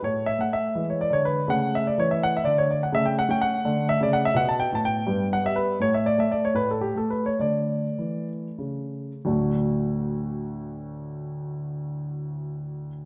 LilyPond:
<<
  \new Staff \with { instrumentName = "Grand piano" } { \time 6/8 \key a \major \tempo 4. = 80 cis''8 e''16 fis''16 e''8. cis''16 d''16 cis''16 b'8 | fis''8 e''16 d''16 cis''16 e''16 fis''16 e''16 d''16 cis''16 d''16 fis''16 | \key d \major e''16 g''16 fis''16 g''16 fis''4 e''16 d''16 fis''16 e''16 | fis''16 a''16 g''16 a''16 g''4 fis''16 e''16 b'8 |
cis''16 e''16 d''16 e''16 d''16 cis''16 b'16 a'16 g'16 a'16 b'16 cis''16 | d''4. r4. | <d, a, fis a d' fis'>2.~ | <d, a, fis a d' fis'>2. | }
  \new Staff \with { instrumentName = "Grand piano" } { \clef bass \time 6/8 \key a \major << { a4. gis4. | a2. | \key d \major a4. a4. | b4. b4. |
a4. a4. | a2. | r2. | r2. | } \\ { a,8. a8. e8. d8. | cis4 e4 d4 | cis8. cis'8. d8. cis8. | b,8. a,8. g,8. g8. |
a,8. a8. a,8. a8. | d4 e4 cis4 | r2. | r2. | } >> }
>>